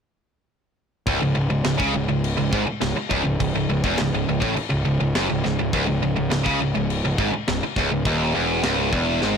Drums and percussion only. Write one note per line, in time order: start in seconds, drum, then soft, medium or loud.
1.07 kick loud
1.07 crash medium
1.65 snare loud
1.65 crash medium
1.80 kick loud
2.24 crash medium
2.53 kick loud
2.81 snare loud
2.81 crash medium
3.11 kick loud
3.40 kick medium
3.40 crash medium
3.84 kick loud
3.98 snare loud
3.98 crash medium
4.42 kick loud
4.57 crash medium
5.15 snare loud
5.15 crash medium
5.45 snare soft
5.73 kick loud
5.73 crash medium
6.31 snare loud
6.31 crash medium
6.46 kick loud
6.90 crash medium
7.18 kick loud
7.48 snare loud
7.48 crash medium
7.76 kick loud
7.76 snare soft
8.05 kick loud
8.05 crash medium
8.63 snare loud
8.63 crash medium
8.93 kick loud
9.22 snare medium